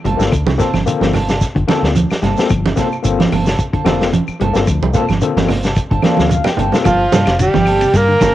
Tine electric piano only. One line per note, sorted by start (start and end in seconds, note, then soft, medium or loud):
0.17 0.31 A#3 medium
0.17 0.31 C4 medium
0.17 0.31 F4 medium
0.17 0.32 A4 medium
0.58 0.68 A#3 medium
0.58 0.68 C4 medium
0.58 0.69 F4 medium
0.58 0.69 A4 medium
0.86 1.13 A#3 medium
0.86 1.13 C4 medium
0.86 1.14 F4 medium
0.86 1.14 A4 medium
1.67 1.90 A#3 medium
1.67 1.91 C4 medium
1.67 1.91 F4 medium
1.67 1.91 A4 medium
2.37 2.49 A#3 medium
2.37 2.50 C4 medium
2.37 2.50 F4 medium
2.37 2.50 A4 medium
2.76 2.86 A#3 medium
2.76 2.87 C4 medium
2.76 2.87 F4 medium
2.76 2.87 A4 medium
3.03 3.30 A#3 medium
3.03 3.31 C4 medium
3.03 3.31 F4 medium
3.03 3.31 A4 medium
3.84 4.08 A#3 medium
3.84 4.08 C4 medium
3.84 4.08 F4 medium
3.84 4.09 A4 medium
4.53 4.66 A#3 medium
4.53 4.67 C4 medium
4.53 4.67 F4 medium
4.53 4.68 A4 medium
4.93 5.04 A#3 medium
4.93 5.04 C4 medium
4.93 5.04 F4 medium
4.93 5.04 A4 medium
5.22 5.49 A#3 medium
5.22 5.49 C4 medium
5.22 5.49 F4 medium
5.22 5.49 A4 medium
6.03 6.26 A#3 medium
6.03 6.26 C4 medium
6.03 6.27 F4 medium
6.03 6.27 A4 medium
6.03 6.12 D5 medium
6.15 6.30 F5 medium
6.33 6.45 F5 medium
6.46 6.83 G5 medium
6.73 6.85 A#3 medium
6.73 6.85 C4 medium
6.73 6.86 F4 medium
6.73 6.86 A4 medium